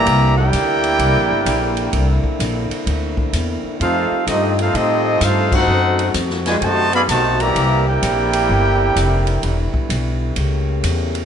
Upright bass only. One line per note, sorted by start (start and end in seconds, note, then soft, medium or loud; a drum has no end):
0.06 0.51 C2 loud
0.53 0.98 D2 loud
0.99 1.15 C2 loud
1.15 1.30 A#1 medium
1.30 1.45 G1 medium
1.46 1.91 A#1 loud
1.93 2.22 C2 loud
2.24 muted upright bass stroke soft
2.39 2.68 A#1 loud
2.71 muted upright bass stroke soft
2.86 3.32 D2 medium
3.33 3.62 E2 medium
3.63 muted upright bass stroke soft
3.80 4.09 F2 medium
4.11 muted upright bass stroke soft
4.27 4.72 G2 loud
4.74 5.19 A2 medium
5.21 5.66 G2 medium
5.67 6.13 F#2 medium
6.14 6.60 F2 loud
6.61 7.07 F#2 medium
7.09 7.54 B1 medium
7.56 8.01 C2 medium
8.02 8.48 A#1 loud
8.49 8.95 G1 medium
8.96 9.42 F1 medium
9.43 9.72 E1 medium
9.73 muted upright bass stroke soft
9.90 10.35 B1 loud
10.36 10.82 C#2 medium
10.83 11.25 E2 loud